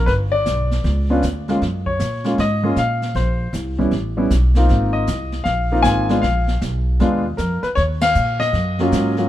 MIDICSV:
0, 0, Header, 1, 5, 480
1, 0, Start_track
1, 0, Key_signature, -6, "minor"
1, 0, Tempo, 385109
1, 87, Time_signature, 4, 2, 24, 8
1, 11578, End_track
2, 0, Start_track
2, 0, Title_t, "Grand piano"
2, 0, Program_c, 0, 0
2, 78, Note_on_c, 0, 71, 85
2, 149, Note_off_c, 0, 71, 0
2, 395, Note_on_c, 0, 74, 96
2, 1372, Note_on_c, 0, 59, 63
2, 1377, Note_on_c, 0, 61, 58
2, 1382, Note_on_c, 0, 62, 57
2, 1387, Note_on_c, 0, 65, 69
2, 1518, Note_off_c, 0, 59, 0
2, 1521, Note_off_c, 0, 61, 0
2, 1523, Note_off_c, 0, 62, 0
2, 1526, Note_off_c, 0, 65, 0
2, 1788, Note_off_c, 0, 74, 0
2, 1856, Note_on_c, 0, 56, 57
2, 1866, Note_on_c, 0, 58, 54
2, 1866, Note_on_c, 0, 61, 50
2, 1870, Note_on_c, 0, 65, 64
2, 2000, Note_off_c, 0, 56, 0
2, 2005, Note_off_c, 0, 58, 0
2, 2006, Note_off_c, 0, 61, 0
2, 2007, Note_off_c, 0, 65, 0
2, 2321, Note_on_c, 0, 73, 79
2, 2801, Note_on_c, 0, 56, 54
2, 2811, Note_on_c, 0, 61, 49
2, 2812, Note_on_c, 0, 58, 49
2, 2822, Note_on_c, 0, 65, 62
2, 2953, Note_off_c, 0, 56, 0
2, 2958, Note_off_c, 0, 61, 0
2, 2959, Note_off_c, 0, 58, 0
2, 2964, Note_off_c, 0, 65, 0
2, 2990, Note_off_c, 0, 73, 0
2, 2992, Note_on_c, 0, 75, 89
2, 3282, Note_on_c, 0, 56, 60
2, 3290, Note_on_c, 0, 58, 55
2, 3291, Note_on_c, 0, 61, 57
2, 3298, Note_on_c, 0, 65, 62
2, 3434, Note_off_c, 0, 56, 0
2, 3438, Note_off_c, 0, 58, 0
2, 3438, Note_off_c, 0, 61, 0
2, 3442, Note_off_c, 0, 65, 0
2, 3469, Note_on_c, 0, 77, 91
2, 3475, Note_off_c, 0, 75, 0
2, 3906, Note_off_c, 0, 77, 0
2, 3934, Note_on_c, 0, 72, 78
2, 4378, Note_off_c, 0, 72, 0
2, 4716, Note_on_c, 0, 59, 50
2, 4718, Note_on_c, 0, 55, 56
2, 4720, Note_on_c, 0, 61, 51
2, 4727, Note_on_c, 0, 64, 61
2, 4870, Note_off_c, 0, 59, 0
2, 4872, Note_off_c, 0, 55, 0
2, 4873, Note_off_c, 0, 61, 0
2, 4876, Note_off_c, 0, 64, 0
2, 5196, Note_on_c, 0, 55, 60
2, 5199, Note_on_c, 0, 59, 54
2, 5203, Note_on_c, 0, 61, 53
2, 5208, Note_on_c, 0, 64, 67
2, 5350, Note_off_c, 0, 55, 0
2, 5352, Note_off_c, 0, 59, 0
2, 5354, Note_off_c, 0, 61, 0
2, 5356, Note_off_c, 0, 64, 0
2, 5690, Note_on_c, 0, 58, 59
2, 5693, Note_on_c, 0, 60, 59
2, 5699, Note_on_c, 0, 63, 58
2, 5701, Note_on_c, 0, 65, 68
2, 6144, Note_on_c, 0, 75, 75
2, 6300, Note_off_c, 0, 58, 0
2, 6302, Note_off_c, 0, 60, 0
2, 6304, Note_off_c, 0, 63, 0
2, 6305, Note_off_c, 0, 65, 0
2, 6778, Note_on_c, 0, 77, 89
2, 6820, Note_off_c, 0, 75, 0
2, 7125, Note_on_c, 0, 58, 64
2, 7135, Note_on_c, 0, 60, 57
2, 7136, Note_on_c, 0, 63, 61
2, 7142, Note_on_c, 0, 65, 70
2, 7238, Note_off_c, 0, 77, 0
2, 7261, Note_on_c, 0, 80, 94
2, 7570, Note_off_c, 0, 58, 0
2, 7575, Note_off_c, 0, 60, 0
2, 7576, Note_off_c, 0, 63, 0
2, 7578, Note_off_c, 0, 65, 0
2, 7602, Note_on_c, 0, 56, 61
2, 7605, Note_on_c, 0, 62, 51
2, 7608, Note_on_c, 0, 59, 54
2, 7616, Note_on_c, 0, 65, 67
2, 7749, Note_on_c, 0, 77, 84
2, 7752, Note_off_c, 0, 56, 0
2, 7754, Note_off_c, 0, 62, 0
2, 7755, Note_off_c, 0, 59, 0
2, 7760, Note_off_c, 0, 65, 0
2, 7768, Note_off_c, 0, 80, 0
2, 8203, Note_off_c, 0, 77, 0
2, 8726, Note_on_c, 0, 56, 61
2, 8735, Note_on_c, 0, 59, 57
2, 8740, Note_on_c, 0, 62, 56
2, 8743, Note_on_c, 0, 65, 69
2, 9005, Note_off_c, 0, 56, 0
2, 9009, Note_off_c, 0, 59, 0
2, 9012, Note_off_c, 0, 62, 0
2, 9014, Note_off_c, 0, 65, 0
2, 9189, Note_on_c, 0, 70, 73
2, 9485, Note_off_c, 0, 70, 0
2, 9508, Note_on_c, 0, 71, 73
2, 9571, Note_off_c, 0, 71, 0
2, 9664, Note_on_c, 0, 73, 94
2, 9737, Note_off_c, 0, 73, 0
2, 9992, Note_on_c, 0, 77, 109
2, 10440, Note_off_c, 0, 77, 0
2, 10466, Note_on_c, 0, 75, 100
2, 10965, Note_on_c, 0, 54, 64
2, 10972, Note_on_c, 0, 58, 60
2, 10974, Note_on_c, 0, 61, 62
2, 10978, Note_on_c, 0, 65, 72
2, 11409, Note_off_c, 0, 54, 0
2, 11412, Note_off_c, 0, 58, 0
2, 11414, Note_off_c, 0, 61, 0
2, 11415, Note_off_c, 0, 65, 0
2, 11436, Note_on_c, 0, 54, 58
2, 11436, Note_on_c, 0, 58, 49
2, 11445, Note_on_c, 0, 61, 50
2, 11449, Note_on_c, 0, 65, 57
2, 11578, Note_off_c, 0, 54, 0
2, 11578, Note_off_c, 0, 58, 0
2, 11578, Note_off_c, 0, 61, 0
2, 11578, Note_off_c, 0, 65, 0
2, 11578, Note_off_c, 0, 75, 0
2, 11578, End_track
3, 0, Start_track
3, 0, Title_t, "Upright bass"
3, 0, Program_c, 1, 32
3, 91, Note_on_c, 1, 31, 77
3, 555, Note_off_c, 1, 31, 0
3, 572, Note_on_c, 1, 35, 76
3, 1036, Note_off_c, 1, 35, 0
3, 1048, Note_on_c, 1, 37, 81
3, 1514, Note_off_c, 1, 37, 0
3, 1533, Note_on_c, 1, 38, 75
3, 1997, Note_off_c, 1, 38, 0
3, 2014, Note_on_c, 1, 42, 78
3, 2477, Note_off_c, 1, 42, 0
3, 2488, Note_on_c, 1, 46, 79
3, 2954, Note_off_c, 1, 46, 0
3, 2970, Note_on_c, 1, 44, 78
3, 3435, Note_off_c, 1, 44, 0
3, 3444, Note_on_c, 1, 46, 78
3, 3913, Note_off_c, 1, 46, 0
3, 3923, Note_on_c, 1, 34, 82
3, 4392, Note_off_c, 1, 34, 0
3, 4398, Note_on_c, 1, 36, 80
3, 4869, Note_off_c, 1, 36, 0
3, 4876, Note_on_c, 1, 33, 80
3, 5348, Note_off_c, 1, 33, 0
3, 5366, Note_on_c, 1, 35, 75
3, 5833, Note_off_c, 1, 35, 0
3, 5847, Note_on_c, 1, 32, 76
3, 6313, Note_off_c, 1, 32, 0
3, 6329, Note_on_c, 1, 36, 73
3, 6794, Note_off_c, 1, 36, 0
3, 6801, Note_on_c, 1, 34, 79
3, 7269, Note_off_c, 1, 34, 0
3, 7278, Note_on_c, 1, 32, 81
3, 7748, Note_off_c, 1, 32, 0
3, 7767, Note_on_c, 1, 34, 75
3, 8232, Note_off_c, 1, 34, 0
3, 8247, Note_on_c, 1, 35, 84
3, 8712, Note_off_c, 1, 35, 0
3, 8728, Note_on_c, 1, 39, 79
3, 9192, Note_off_c, 1, 39, 0
3, 9204, Note_on_c, 1, 41, 83
3, 9493, Note_off_c, 1, 41, 0
3, 9682, Note_on_c, 1, 39, 76
3, 10149, Note_off_c, 1, 39, 0
3, 10162, Note_on_c, 1, 46, 77
3, 10624, Note_off_c, 1, 46, 0
3, 10631, Note_on_c, 1, 42, 81
3, 11103, Note_off_c, 1, 42, 0
3, 11116, Note_on_c, 1, 44, 79
3, 11578, Note_off_c, 1, 44, 0
3, 11578, End_track
4, 0, Start_track
4, 0, Title_t, "Muted upright bass strokes"
4, 9509, Note_on_c, 9, 29, 37
4, 9633, Note_off_c, 9, 29, 0
4, 11578, End_track
5, 0, Start_track
5, 0, Title_t, "Drums"
5, 92, Note_on_c, 9, 25, 42
5, 92, Note_on_c, 9, 38, 40
5, 217, Note_off_c, 9, 38, 0
5, 570, Note_on_c, 9, 44, 49
5, 572, Note_on_c, 9, 38, 48
5, 695, Note_off_c, 9, 44, 0
5, 696, Note_off_c, 9, 38, 0
5, 887, Note_on_c, 9, 38, 34
5, 1012, Note_off_c, 9, 38, 0
5, 1055, Note_off_c, 9, 25, 0
5, 1055, Note_on_c, 9, 25, 47
5, 1055, Note_on_c, 9, 38, 37
5, 1179, Note_off_c, 9, 38, 0
5, 1525, Note_on_c, 9, 44, 47
5, 1527, Note_on_c, 9, 38, 51
5, 1650, Note_off_c, 9, 44, 0
5, 1651, Note_off_c, 9, 38, 0
5, 1846, Note_on_c, 9, 38, 36
5, 1970, Note_off_c, 9, 38, 0
5, 2015, Note_off_c, 9, 25, 0
5, 2015, Note_on_c, 9, 25, 49
5, 2015, Note_on_c, 9, 38, 37
5, 2140, Note_off_c, 9, 38, 0
5, 2322, Note_on_c, 9, 36, 50
5, 2447, Note_off_c, 9, 36, 0
5, 2487, Note_on_c, 9, 44, 43
5, 2488, Note_on_c, 9, 38, 50
5, 2612, Note_off_c, 9, 44, 0
5, 2613, Note_off_c, 9, 38, 0
5, 2794, Note_on_c, 9, 38, 36
5, 2919, Note_off_c, 9, 38, 0
5, 2968, Note_off_c, 9, 25, 0
5, 2968, Note_on_c, 9, 25, 47
5, 2968, Note_on_c, 9, 38, 38
5, 3092, Note_off_c, 9, 38, 0
5, 3446, Note_on_c, 9, 44, 44
5, 3447, Note_on_c, 9, 38, 54
5, 3570, Note_off_c, 9, 44, 0
5, 3572, Note_off_c, 9, 38, 0
5, 3765, Note_on_c, 9, 38, 38
5, 3889, Note_off_c, 9, 38, 0
5, 3932, Note_off_c, 9, 25, 0
5, 3932, Note_on_c, 9, 25, 47
5, 3932, Note_on_c, 9, 38, 43
5, 4057, Note_off_c, 9, 38, 0
5, 4404, Note_on_c, 9, 44, 55
5, 4406, Note_on_c, 9, 38, 47
5, 4529, Note_off_c, 9, 44, 0
5, 4530, Note_off_c, 9, 38, 0
5, 4716, Note_on_c, 9, 36, 51
5, 4841, Note_off_c, 9, 36, 0
5, 4883, Note_off_c, 9, 25, 0
5, 4883, Note_on_c, 9, 25, 42
5, 4883, Note_on_c, 9, 38, 38
5, 5007, Note_off_c, 9, 38, 0
5, 5364, Note_on_c, 9, 44, 52
5, 5366, Note_on_c, 9, 38, 51
5, 5489, Note_off_c, 9, 44, 0
5, 5490, Note_off_c, 9, 38, 0
5, 5670, Note_on_c, 9, 38, 37
5, 5795, Note_off_c, 9, 38, 0
5, 5844, Note_off_c, 9, 25, 0
5, 5844, Note_on_c, 9, 25, 41
5, 5844, Note_on_c, 9, 38, 41
5, 5968, Note_off_c, 9, 38, 0
5, 6321, Note_on_c, 9, 44, 50
5, 6323, Note_on_c, 9, 38, 50
5, 6446, Note_off_c, 9, 44, 0
5, 6447, Note_off_c, 9, 38, 0
5, 6632, Note_on_c, 9, 38, 34
5, 6757, Note_off_c, 9, 38, 0
5, 6792, Note_off_c, 9, 25, 0
5, 6792, Note_on_c, 9, 25, 44
5, 6792, Note_on_c, 9, 38, 39
5, 6917, Note_off_c, 9, 38, 0
5, 7275, Note_on_c, 9, 44, 52
5, 7276, Note_on_c, 9, 38, 54
5, 7399, Note_off_c, 9, 44, 0
5, 7401, Note_off_c, 9, 38, 0
5, 7592, Note_on_c, 9, 38, 35
5, 7717, Note_off_c, 9, 38, 0
5, 7761, Note_off_c, 9, 25, 0
5, 7761, Note_on_c, 9, 25, 42
5, 7761, Note_on_c, 9, 38, 40
5, 7886, Note_off_c, 9, 38, 0
5, 8071, Note_on_c, 9, 38, 34
5, 8196, Note_off_c, 9, 38, 0
5, 8244, Note_on_c, 9, 44, 45
5, 8245, Note_on_c, 9, 38, 52
5, 8369, Note_off_c, 9, 44, 0
5, 8370, Note_off_c, 9, 38, 0
5, 8721, Note_off_c, 9, 25, 0
5, 8721, Note_on_c, 9, 25, 48
5, 8721, Note_on_c, 9, 38, 40
5, 8846, Note_off_c, 9, 38, 0
5, 9197, Note_on_c, 9, 44, 52
5, 9199, Note_on_c, 9, 38, 53
5, 9322, Note_off_c, 9, 44, 0
5, 9323, Note_off_c, 9, 38, 0
5, 9509, Note_on_c, 9, 38, 35
5, 9633, Note_off_c, 9, 38, 0
5, 9676, Note_off_c, 9, 25, 0
5, 9676, Note_on_c, 9, 25, 42
5, 9676, Note_on_c, 9, 38, 41
5, 9800, Note_off_c, 9, 38, 0
5, 9987, Note_on_c, 9, 51, 61
5, 9988, Note_on_c, 9, 38, 76
5, 10112, Note_off_c, 9, 51, 0
5, 10113, Note_off_c, 9, 38, 0
5, 10157, Note_on_c, 9, 44, 46
5, 10282, Note_off_c, 9, 44, 0
5, 10474, Note_on_c, 9, 38, 39
5, 10599, Note_off_c, 9, 38, 0
5, 10641, Note_off_c, 9, 25, 0
5, 10641, Note_on_c, 9, 25, 45
5, 10641, Note_on_c, 9, 38, 40
5, 10765, Note_off_c, 9, 38, 0
5, 10953, Note_on_c, 9, 38, 30
5, 11078, Note_off_c, 9, 38, 0
5, 11121, Note_on_c, 9, 44, 54
5, 11122, Note_on_c, 9, 38, 56
5, 11246, Note_off_c, 9, 44, 0
5, 11247, Note_off_c, 9, 38, 0
5, 11428, Note_on_c, 9, 38, 35
5, 11552, Note_off_c, 9, 38, 0
5, 11578, Note_off_c, 9, 25, 0
5, 11578, End_track
0, 0, End_of_file